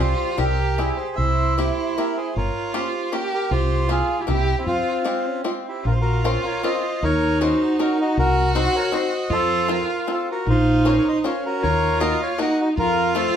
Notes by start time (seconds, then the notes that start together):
0.00 C2 G3 C4 F4 G4 C5
0.38 C2 G3 C4 E4 G4 A#4
0.77 G3 C4 E4 G4 G#4
0.97 G#4 C5
1.16 C2 E4 C5 E5
1.57 A#3 C4 E4 G4 C5
1.97 A#3 C4 E4 G4 A#4
2.17 G#4 C5
2.36 G1 F4 A#4 C#5
2.74 A#3 C#4 F4 G4 C5
3.12 A#3 C#4 F4 G4 A#4
3.34 G4 A#4
3.51 C2 F4 G4 C5
3.89 A#3 C4 F4 G4 G#4
4.20 E4 G4
4.25 C2 A#3 C4 E4 F4 G4
4.33 E4 G4
4.58 C4 E4
4.66 F2 C4 F4
5.05 G#3 C4 F4 G4
5.26 C#4
5.44 G#3 C4 F4 G4
5.68 E4 G4
5.85 A#1 F4 A#4
5.92 C5
6.01 F#4 A#4
6.24 C4 C#4 F4 A#4 C5
6.45 A#4 C#5
6.63 C4 C#4 F4 A#4 C5 D#5
7.02 D#2 D#4 A#4 C#5
7.41 C#4 D#4 F#4 A#4 C5
7.79 C#4 D#4 F#4 A#4
8.01 D#4 F#4
8.17 C2 F#4 A#4
8.55 C4 D#4 F#4 C5
8.59 C5
8.76 A#4 C#5
8.92 C4 D#4 F#4 C5 D#5
9.30 F2 F4 A4 C5
9.68 C4 F4 A4 C5
9.72 F4 A#4
10.08 C4 F4 A4 C5
10.31 F#4 A#4
10.46 A#1 D#4 F4 C5
10.85 C#4 F4 A#4 C5 C#5
10.93 C5
10.98 A#4 C#5
11.08 C5 D#5
11.17 D#4
11.24 C#4 F4 A#4 C5 C#5 F5
11.46 F#4 A#4
11.62 D#2 F4 A#4 C#5
12.00 A#3 D#4 F#4 A#4 D#5
12.22 C#5 F5
12.38 A#3 D#4 F#4 A#4 D#5 F#5
12.61 D#4 F#4
12.77 F2 F4 A#4
13.15 A3 C4 F4 A4 C5